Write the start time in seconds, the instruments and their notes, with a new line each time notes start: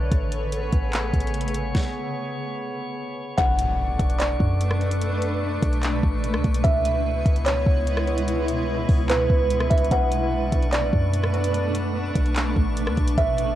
Already playing: 808-style bass B1
0.11 808-style bass A1, ambient pad C#3 A3 G#4 B4, synth texture B3 G#4 C#5, kick, closed hi-hat
0.32 closed hi-hat
0.52 closed hi-hat
0.72 808-style bass A1, kick, closed hi-hat
0.93 clap, closed hi-hat
1.13 808-style bass A1, kick, closed hi-hat
1.20 closed hi-hat
1.27 closed hi-hat
1.34 closed hi-hat
1.41 closed hi-hat
1.48 closed hi-hat
1.54 closed hi-hat
1.75 kick, snare
3.38 808-style bass B1, ambient pad B2 A3 D4 B4, synth texture A3 D4 C#6, kalimba F#5, kick, closed hi-hat, impact
3.59 closed hi-hat
3.99 808-style bass B1, kick, closed hi-hat
4.10 closed hi-hat
4.19 kalimba D5, clap, closed hi-hat
4.40 808-style bass F#2, kick
4.61 closed hi-hat
4.71 cross-stick
4.81 closed hi-hat
4.91 closed hi-hat
5.02 closed hi-hat
5.22 closed hi-hat
5.63 808-style bass B1, kick, closed hi-hat
5.73 closed hi-hat
5.83 clap, closed hi-hat
6.03 808-style bass A1, kick
6.24 closed hi-hat
6.34 808-style bass D2, cross-stick
6.44 808-style bass B1, kick, closed hi-hat
6.54 closed hi-hat
6.64 808-style bass C#2, ambient pad G#3 E4, synth texture B3 E4, kalimba E5, kick, closed hi-hat
6.85 closed hi-hat
7.26 808-style bass C#2, kick, closed hi-hat
7.36 closed hi-hat
7.46 kalimba C#5, clap, closed hi-hat
7.66 808-style bass C#2, kick
7.87 closed hi-hat
7.97 cross-stick
8.07 closed hi-hat
8.18 closed hi-hat
8.28 closed hi-hat
8.48 closed hi-hat
8.89 808-style bass C#2, kick, open hi-hat
9.10 kalimba B4, clap, closed hi-hat
9.30 808-style bass C#2, kick
9.50 closed hi-hat
9.60 cross-stick
9.70 808-style bass C#2, kalimba E5, kick, closed hi-hat
9.78 closed hi-hat
9.84 closed hi-hat
9.91 808-style bass B1, ambient pad A3 D4, synth texture A3 D4 C#6, kalimba F#5, kick, closed hi-hat
10.12 closed hi-hat
10.52 808-style bass B1, kick, closed hi-hat
10.63 closed hi-hat
10.72 kalimba D5, clap, closed hi-hat
10.93 808-style bass F#2, kick
11.14 closed hi-hat
11.24 cross-stick
11.34 closed hi-hat
11.44 closed hi-hat
11.54 closed hi-hat
11.75 closed hi-hat
12.15 808-style bass B1, kick, closed hi-hat
12.26 closed hi-hat
12.36 clap, closed hi-hat
12.56 808-style bass A1, kick
12.77 closed hi-hat
12.87 808-style bass D2, cross-stick
12.97 808-style bass B1, kick, closed hi-hat
13.08 closed hi-hat
13.18 808-style bass A1, synth texture B3 G#4, kalimba E5, kick, closed hi-hat
13.38 closed hi-hat